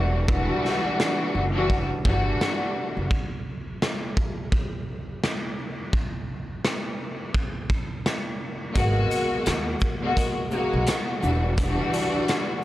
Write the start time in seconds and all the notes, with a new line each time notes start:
Already playing: E1 E3 G3 D4 F#4
0.28 E3 G3 D4 F#4, kick
0.65 snare
1.00 cross-stick, snare
1.35 F#1
1.53 E3 G3 D4 F#4
1.70 kick
2.04 G1 E3 G3 D4 F#4, kick
2.41 cross-stick, snare
2.97 F#1
3.11 kick
3.82 cross-stick, snare
4.17 kick
4.52 kick
5.24 cross-stick, snare
5.93 kick
6.65 cross-stick, snare
7.34 kick
7.70 kick
8.06 cross-stick, snare
8.74 G#1 B2 G#3 A#3 F#4, kick, closed hi-hat
9.11 closed hi-hat, shaker
9.46 D#2, cross-stick, snare, closed hi-hat, tambourine
9.80 kick, shaker
10.02 B2 G#3 A#3 F#4
10.17 kick, closed hi-hat
10.51 B2 G#3 A#3 F#4, shaker
10.73 B1
10.87 cross-stick, snare, closed hi-hat, tambourine
11.20 E1 E3 G3 D4 F#4, shaker
11.58 E3 G3 D4 F#4, kick, closed hi-hat
11.94 closed hi-hat, shaker
12.28 cross-stick, snare, closed hi-hat